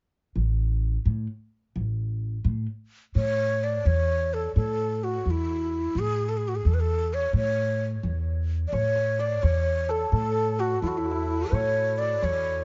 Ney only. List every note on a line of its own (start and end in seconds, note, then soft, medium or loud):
3.16 3.65 C#5 loud
3.63 3.88 D5 medium
3.86 4.35 C#5 medium
4.33 4.55 A4 medium
4.55 5.05 A4 medium
5.03 5.32 F#4 medium
5.30 6.00 E4 medium
5.99 6.30 G#4 medium
6.29 6.38 A4 medium
6.37 6.50 G#4 medium
6.48 6.57 F#4 medium
6.55 6.68 G#4 medium
6.67 6.75 A4 medium
6.74 6.81 B4 medium
6.80 7.15 A4 medium
7.14 7.36 C#5 medium
7.36 7.84 C#5 medium
8.67 8.75 D5 medium
8.73 9.22 C#5 medium
9.20 9.44 D5 medium
9.42 9.92 C#5 medium
9.90 10.13 A4 medium
10.14 10.61 A4 medium
10.60 10.82 F#4 medium
10.82 10.89 E4 medium
10.87 10.99 F#4 medium
10.97 11.54 E4 medium
11.53 11.99 C#5 medium
11.98 12.25 D5 medium
12.24 12.64 C#5 medium